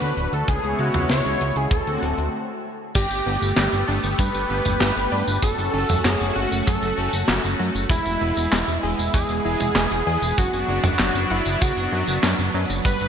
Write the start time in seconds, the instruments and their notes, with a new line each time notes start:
Already playing: analog synth pad A3 D4 F#4, analog synth lead B4
0.01 analog synth bass D2, closed hi-hat
0.17 analog synth bass D1, closed hi-hat
0.33 analog synth bass D2, analog synth lead A4, closed hi-hat
0.48 analog synth bass C#2, analog synth pad C#3 G#3 B3 E4 C#5, analog synth lead G#4, kick, closed hi-hat
0.64 analog synth bass C#2, closed hi-hat
0.79 analog synth bass C#2, analog synth lead F#4, closed hi-hat
0.94 analog synth bass C#2, closed hi-hat, mid tom
1.09 analog synth bass C#2, analog synth lead C#5, snare, closed hi-hat
1.25 analog synth bass C#2, closed hi-hat
1.41 analog synth bass C#2, closed hi-hat
1.56 analog synth bass C#2, analog synth lead G#4, closed hi-hat
1.71 analog synth bass D1, analog synth pad D3 A3 C4 F#4, analog synth lead A4, kick, closed hi-hat
1.87 analog synth bass D2, closed hi-hat
2.03 analog synth bass D1, closed hi-hat
2.18 analog synth bass D2, closed hi-hat
2.95 analog synth bass G1, synth arpeggio sound G3, analog synth pad A3 B3 G4, analog synth lead G4, kick, closed hi-hat, crash, tambourine
3.11 analog synth bass G1, closed hi-hat, tambourine
3.26 analog synth bass G1, synth arpeggio sound B3, open hi-hat
3.41 analog synth bass G1, closed hi-hat, tambourine
3.56 analog synth bass G1, synth arpeggio sound G3, snare, clap, closed hi-hat, tambourine
3.72 analog synth bass G1, closed hi-hat, tambourine
3.88 analog synth bass G1, synth arpeggio sound D4, open hi-hat
4.03 analog synth bass G1, closed hi-hat, tambourine
4.18 analog synth bass G2, synth arpeggio sound G3, analog synth lead B4, kick, closed hi-hat, tambourine
4.35 analog synth bass G1, closed hi-hat, tambourine
4.50 analog synth bass G1, synth arpeggio sound B3, open hi-hat
4.65 analog synth bass G1, closed hi-hat, mid tom, tambourine
4.80 analog synth bass G1, synth arpeggio sound G3, snare, clap, closed hi-hat, tambourine
4.97 analog synth bass G1, closed hi-hat, tambourine
5.11 analog synth bass G2, synth arpeggio sound D4, open hi-hat
5.28 analog synth bass G1, closed hi-hat, tambourine
5.42 analog synth bass F#1, synth arpeggio sound F#3, analog synth pad A3 C#4 F#4, analog synth lead A4, kick, closed hi-hat, tambourine
5.58 analog synth bass F#1, closed hi-hat, tambourine
5.74 analog synth bass F#1, synth arpeggio sound C#4, open hi-hat
5.89 analog synth bass F#1, closed hi-hat, mid tom, tambourine
6.05 analog synth bass F#1, synth arpeggio sound F#3, analog synth lead G#4, snare, clap, closed hi-hat, tambourine
6.21 analog synth bass F#1, closed hi-hat, tambourine
6.35 analog synth bass F#1, analog synth lead F#4, synth arpeggio sound F#4, open hi-hat
6.51 analog synth bass F#1, closed hi-hat, tambourine
6.66 analog synth bass F#2, synth arpeggio sound F#3, analog synth lead A4, kick, closed hi-hat, tambourine
6.82 analog synth bass F#1, closed hi-hat, tambourine
6.97 analog synth bass F#1, synth arpeggio sound C#4, open hi-hat
7.13 analog synth bass F#1, closed hi-hat, tambourine
7.28 analog synth bass F#1, synth arpeggio sound F#3, snare, clap, closed hi-hat, tambourine
7.44 analog synth bass F#1, closed hi-hat, tambourine
7.59 analog synth bass F#2, synth arpeggio sound F#4, open hi-hat
7.75 analog synth bass F#1, closed hi-hat, tambourine
7.90 analog synth bass E1, synth arpeggio sound G#3, analog synth pad G#3 B3 E4, analog synth lead E4, kick, closed hi-hat, tambourine
8.06 analog synth bass E1, closed hi-hat, tambourine
8.21 analog synth bass E1, synth arpeggio sound E4, open hi-hat
8.37 analog synth bass E1, closed hi-hat, tambourine
8.52 analog synth bass E1, synth arpeggio sound G#3, snare, clap, closed hi-hat, tambourine
8.68 analog synth bass E1, closed hi-hat, tambourine
8.83 analog synth bass E1, synth arpeggio sound G#4, open hi-hat
8.98 analog synth bass E1, closed hi-hat, tambourine
9.14 analog synth bass E2, synth arpeggio sound G#3, analog synth lead G#4, kick, closed hi-hat, tambourine
9.29 analog synth bass E1, closed hi-hat, tambourine
9.45 analog synth bass E1, synth arpeggio sound E4, open hi-hat
9.60 analog synth bass E1, closed hi-hat, mid tom, tambourine
9.75 analog synth bass E1, synth arpeggio sound G#3, snare, clap, closed hi-hat, tambourine
9.91 analog synth bass E1, closed hi-hat, tambourine
10.07 analog synth bass E2, synth arpeggio sound G#4, open hi-hat
10.22 analog synth bass E1, closed hi-hat, tambourine
10.37 analog synth bass F#1, analog synth pad F#3 D4, synth arpeggio sound F#3, analog synth lead F#4, kick, closed hi-hat, tambourine
10.53 analog synth bass F#1, closed hi-hat, tambourine
10.68 analog synth bass F#1, synth arpeggio sound D4, open hi-hat
10.84 analog synth bass F#1, closed hi-hat, mid tom, tambourine
10.99 analog synth bass F#1, synth arpeggio sound F#3, analog synth lead F#4, snare, clap, closed hi-hat, tambourine
11.15 analog synth bass F#1, closed hi-hat, tambourine
11.30 analog synth bass F#1, analog synth lead E4, synth arpeggio sound F#4, open hi-hat
11.46 analog synth bass F#1, closed hi-hat, tambourine
11.61 analog synth bass C#2, synth arpeggio sound F#3, analog synth lead F#4, kick, closed hi-hat, tambourine
11.77 analog synth bass F#1, closed hi-hat, tambourine
11.92 analog synth bass F#2, synth arpeggio sound F#4, open hi-hat
12.07 analog synth bass F#1, closed hi-hat, tambourine
12.23 analog synth bass F#2, synth arpeggio sound D4, snare, clap, closed hi-hat, tambourine
12.39 analog synth bass F#1, closed hi-hat, tambourine
12.54 analog synth bass F#2, synth arpeggio sound F#3, open hi-hat
12.70 analog synth bass F#1, closed hi-hat, tambourine
12.85 analog synth bass G1, analog synth pad G3 A3, synth arpeggio sound G3, analog synth lead B4, kick, closed hi-hat, tambourine
13.00 analog synth bass G1, closed hi-hat, tambourine